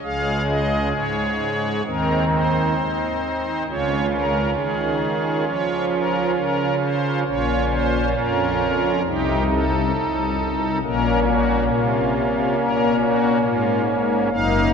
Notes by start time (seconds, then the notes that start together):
0.03 C#2 C#3 G#3 G#4 F5
0.49 D#5
0.94 G#2 C#5
1.85 D#2 D#3 C4 D#4 A#4
2.32 C5
2.78 D#4
3.68 C#2 C#3 C#4 F4 C#5
4.12 A#4
4.56 D#3 G#4
5.47 F3 C#5
5.93 A#4
6.36 C#3 A#4
6.81 C5
7.26 A#1 A#2 C#4 F4 C#5
7.70 C5
8.16 F2 A#4
9.05 C2 C3 D#4 G4
9.50 A4
9.96 C2
10.83 A#1 A#2 A#3 C#4 A#4
11.26 F#4
11.69 C3 F4
12.59 A#2 A#4
13.01 F#4
13.44 G#2 F4
14.30 F#1 F#2 A#3 D#4 F5